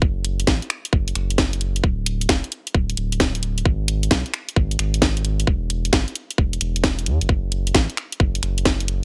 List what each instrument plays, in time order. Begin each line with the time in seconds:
0.02 sub bass F#1, kick
0.25 closed hi-hat
0.40 closed hi-hat
0.47 sub bass A1, kick, snare
0.62 closed hi-hat
0.70 finger snap, closed hi-hat
0.85 closed hi-hat
0.93 sub bass F#1, kick
1.08 closed hi-hat
1.15 sub bass F#1, finger snap, closed hi-hat
1.30 closed hi-hat
1.38 kick, snare
1.53 closed hi-hat
1.61 closed hi-hat
1.76 closed hi-hat
1.84 sub bass D1, kick
2.06 closed hi-hat
2.21 closed hi-hat
2.29 sub bass F1, finger snap, kick, snare
2.44 closed hi-hat
2.52 closed hi-hat
2.67 closed hi-hat
2.75 sub bass D1, kick
2.90 closed hi-hat
2.97 sub bass D1, closed hi-hat
3.12 closed hi-hat
3.20 kick, snare
3.35 closed hi-hat
3.43 closed hi-hat
3.58 closed hi-hat
3.65 sub bass G#1, kick
3.88 closed hi-hat
4.03 closed hi-hat
4.11 sub bass B1, kick, snare
4.26 closed hi-hat
4.34 finger snap, closed hi-hat
4.49 closed hi-hat
4.56 sub bass G#1, kick
4.71 closed hi-hat
4.79 sub bass G#1, finger snap, closed hi-hat
4.94 closed hi-hat
5.02 kick, snare
5.17 closed hi-hat
5.25 closed hi-hat
5.40 closed hi-hat
5.47 sub bass E1, kick
5.70 closed hi-hat
5.85 closed hi-hat
5.93 sub bass G1, finger snap, kick, snare
6.08 closed hi-hat
6.16 closed hi-hat
6.31 closed hi-hat
6.38 sub bass E1, kick
6.53 closed hi-hat
6.61 sub bass E1, closed hi-hat
6.76 closed hi-hat
6.84 kick, snare
6.99 closed hi-hat
7.06 sub bass E2, closed hi-hat
7.21 sub bass G1, closed hi-hat
7.29 sub bass F#1, kick
7.52 closed hi-hat
7.67 closed hi-hat
7.75 sub bass A1, kick, snare
7.90 closed hi-hat
7.97 finger snap, closed hi-hat
8.12 closed hi-hat
8.20 sub bass F#1, kick
8.35 closed hi-hat
8.43 sub bass F#1, finger snap, closed hi-hat
8.58 closed hi-hat
8.65 kick, snare
8.80 closed hi-hat
8.88 closed hi-hat